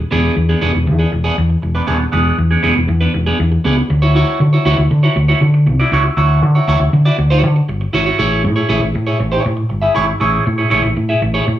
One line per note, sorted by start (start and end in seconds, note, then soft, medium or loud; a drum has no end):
0.11 0.28 E1 loud
0.11 0.34 B3 medium
0.11 0.35 D4 medium
0.11 0.35 G#4 loud
0.36 0.53 E2 loud
0.36 muted clean electric guitar stroke soft
0.49 0.60 B3 medium
0.49 0.60 D4 medium
0.49 0.61 G#4 medium
0.61 0.70 E1 loud
0.61 0.77 B3 medium
0.61 0.73 D4 loud
0.61 0.72 G#4 medium
0.73 0.89 E1 loud
0.73 muted clean electric guitar stroke soft
0.87 1.03 E2 loud
0.87 muted clean electric guitar stroke soft
0.99 1.10 B3 soft
0.99 1.11 D4 medium
0.99 1.11 G#4 medium
1.12 1.28 E1 loud
1.12 muted clean electric guitar stroke soft
1.24 1.36 B3 medium
1.24 1.37 D4 medium
1.24 1.37 G#4 medium
1.38 1.54 E2 loud
1.50 muted clean electric guitar stroke soft
1.62 1.79 E1 medium
1.62 muted clean electric guitar stroke soft
1.75 1.86 B3 medium
1.75 1.86 D4 medium
1.75 1.87 B4 medium
1.87 2.04 D#1 medium
1.87 2.03 B3 loud
1.87 1.99 D4 loud
1.87 1.98 G#4 loud
1.99 muted clean electric guitar stroke soft
2.12 2.29 E1 loud
2.12 2.36 B3 medium
2.12 2.36 D4 medium
2.12 2.36 G#4 medium
2.38 2.54 E2 loud
2.38 muted clean electric guitar stroke soft
2.51 2.61 B3 soft
2.51 2.62 D4 medium
2.51 2.62 G#4 medium
2.63 2.72 E1 loud
2.63 2.79 B3 loud
2.63 2.75 D4 medium
2.63 2.74 G#4 loud
2.75 2.85 E1 medium
2.75 muted clean electric guitar stroke soft
2.88 3.05 E2 loud
2.88 muted clean electric guitar stroke soft
3.01 3.12 B3 medium
3.01 3.13 D4 medium
3.01 3.13 B4 medium
3.13 3.30 E1 loud
3.13 muted clean electric guitar stroke soft
3.26 3.38 B3 medium
3.26 3.39 D4 medium
3.26 3.39 G#4 medium
3.39 3.56 E2 loud
3.39 muted clean electric guitar stroke soft
3.52 muted clean electric guitar stroke medium
3.64 3.81 C#2 medium
3.64 3.80 B3 medium
3.64 3.77 D4 medium
3.64 3.76 G#4 medium
3.77 muted clean electric guitar stroke medium
3.90 4.22 D2 loud
3.90 muted clean electric guitar stroke medium
4.02 4.14 E4 medium
4.02 4.14 F#4 medium
4.02 4.15 C#5 medium
4.15 4.38 E4 medium
4.15 4.38 F#4 medium
4.15 4.39 C#5 medium
4.40 4.56 D3 loud
4.40 muted clean electric guitar stroke soft
4.53 4.64 E4 medium
4.53 4.65 F#4 medium
4.53 4.65 C#5 medium
4.65 4.73 D2 loud
4.65 4.81 E4 medium
4.65 4.78 F#4 loud
4.65 4.77 C#5 medium
4.78 4.86 D2 medium
4.78 muted clean electric guitar stroke soft
4.90 5.07 D3 loud
4.90 muted clean electric guitar stroke soft
5.03 5.15 E4 medium
5.03 5.15 F#4 medium
5.03 5.15 C#5 medium
5.16 5.32 D2 loud
5.16 muted clean electric guitar stroke soft
5.28 5.40 E4 medium
5.28 5.40 F#4 medium
5.28 5.41 C#5 medium
5.41 5.68 D3 loud
5.41 muted clean electric guitar stroke soft
5.54 muted clean electric guitar stroke medium
5.66 5.82 C2 medium
5.66 muted clean electric guitar stroke soft
5.79 5.91 E4 medium
5.79 5.92 F#4 medium
5.79 5.92 D5 medium
5.92 6.08 C#2 loud
5.92 6.08 E4 medium
5.92 6.04 F#4 loud
5.92 6.03 C#5 loud
6.05 muted clean electric guitar stroke medium
6.17 6.42 D2 loud
6.17 6.40 E4 medium
6.17 6.40 F#4 medium
6.17 6.41 C#5 medium
6.42 6.58 D3 loud
6.42 muted clean electric guitar stroke soft
6.55 6.66 E4 medium
6.55 6.67 F#4 medium
6.55 6.67 C#5 medium
6.68 6.76 D2 loud
6.68 6.83 E4 medium
6.68 6.80 F#4 medium
6.68 6.80 C#5 loud
6.80 6.88 D2 medium
6.80 muted clean electric guitar stroke soft
6.93 7.09 D3 loud
6.93 muted clean electric guitar stroke soft
7.05 7.17 E4 medium
7.05 7.17 F#4 medium
7.05 7.18 D5 medium
7.18 7.44 D2 loud
7.18 muted clean electric guitar stroke soft
7.30 7.42 E4 medium
7.30 7.42 F#4 medium
7.30 7.42 C#5 medium
7.43 7.59 D3 medium
7.43 muted clean electric guitar stroke soft
7.56 muted clean electric guitar stroke soft
7.69 7.85 G1 medium
7.69 muted clean electric guitar stroke soft
7.81 muted clean electric guitar stroke soft
7.93 8.10 G#1 medium
7.93 8.06 E4 medium
7.93 8.06 F#4 medium
7.93 8.05 C#5 loud
8.06 8.17 E4 soft
8.06 8.18 F#4 medium
8.06 8.18 C#5 medium
8.18 8.46 A1 loud
8.18 8.42 E4 medium
8.18 8.42 G#4 medium
8.18 8.42 C#5 loud
8.44 8.60 A2 medium
8.44 muted clean electric guitar stroke soft
8.56 8.68 E4 soft
8.56 8.68 G#4 medium
8.56 8.68 C#5 medium
8.69 8.77 A1 loud
8.69 8.85 E4 medium
8.69 8.81 G#4 medium
8.69 8.81 C#5 medium
8.82 8.90 A1 loud
8.82 muted clean electric guitar stroke medium
8.94 9.11 A2 loud
8.94 muted clean electric guitar stroke soft
9.07 9.18 E4 medium
9.07 9.18 G#4 medium
9.07 9.19 C#5 medium
9.20 9.36 A1 loud
9.20 muted clean electric guitar stroke soft
9.32 9.43 E4 medium
9.32 9.43 G#4 medium
9.32 9.44 C#5 medium
9.44 9.62 A2 loud
9.44 muted clean electric guitar stroke medium
9.57 muted clean electric guitar stroke soft
9.69 9.87 G1 medium
9.69 muted clean electric guitar stroke soft
9.82 9.93 E4 medium
9.82 9.94 G#4 medium
9.82 9.95 E5 medium
9.95 10.12 G#1 medium
9.95 10.11 E4 medium
9.95 10.07 G#4 medium
9.95 10.06 C#5 loud
10.07 muted clean electric guitar stroke soft
10.20 10.37 A1 loud
10.20 10.44 E4 medium
10.20 10.44 G#4 medium
10.20 10.44 C#5 medium
10.46 10.63 A2 loud
10.46 muted clean electric guitar stroke soft
10.58 10.69 E4 soft
10.58 10.70 G#4 soft
10.58 10.70 C#5 medium
10.70 10.80 A1 loud
10.70 10.87 E4 medium
10.70 10.84 G#4 loud
10.70 10.83 C#5 loud
10.84 10.92 A1 loud
10.84 muted clean electric guitar stroke soft
10.96 11.13 A2 medium
10.96 muted clean electric guitar stroke soft
11.09 11.20 E4 medium
11.09 11.21 G#4 medium
11.09 11.21 E5 medium
11.22 11.38 A1 loud
11.22 muted clean electric guitar stroke soft
11.34 11.45 E4 medium
11.34 11.45 G#4 medium
11.34 11.46 C#5 medium
11.46 11.59 A2 loud
11.46 muted clean electric guitar stroke medium